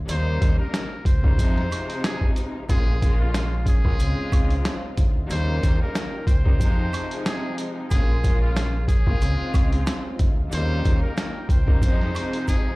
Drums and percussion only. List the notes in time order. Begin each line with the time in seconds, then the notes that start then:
0.09 closed hi-hat, maracas
0.42 kick, closed hi-hat, maracas
0.74 snare, closed hi-hat, maracas
1.05 kick, closed hi-hat, maracas
1.24 kick
1.38 kick, closed hi-hat, maracas
1.58 snare
1.72 closed hi-hat, high woodblock, maracas
1.90 closed hi-hat
2.04 snare, closed hi-hat, maracas
2.21 kick
2.36 closed hi-hat, maracas
2.69 kick, closed hi-hat, maracas
3.02 kick, closed hi-hat, maracas
3.34 snare, closed hi-hat, maracas
3.66 kick, closed hi-hat, maracas
3.85 kick
4.00 closed hi-hat, maracas
4.32 kick, closed hi-hat, high woodblock, maracas
4.50 closed hi-hat
4.65 snare, closed hi-hat, maracas
4.97 kick, closed hi-hat, maracas
5.30 closed hi-hat, maracas
5.63 kick, closed hi-hat, maracas
5.95 snare, closed hi-hat, maracas
6.27 kick, closed hi-hat, maracas
6.46 kick
6.60 kick, closed hi-hat, maracas
6.93 closed hi-hat, high woodblock, maracas
7.11 closed hi-hat
7.26 snare, closed hi-hat, maracas
7.58 closed hi-hat, maracas
7.91 kick, closed hi-hat, maracas
8.24 kick, closed hi-hat, maracas
8.56 snare, closed hi-hat, maracas
8.88 kick, closed hi-hat, maracas
9.07 kick
9.21 closed hi-hat, maracas
9.54 kick, closed hi-hat, high woodblock, maracas
9.72 closed hi-hat
9.87 snare, closed hi-hat, maracas
10.19 kick, closed hi-hat, maracas
10.52 closed hi-hat, maracas
10.85 kick, closed hi-hat, maracas
11.17 snare, closed hi-hat, maracas
11.49 kick, closed hi-hat, maracas
11.68 kick
11.82 kick, closed hi-hat, maracas
12.01 snare
12.15 closed hi-hat, high woodblock, maracas
12.33 closed hi-hat
12.48 kick, closed hi-hat, maracas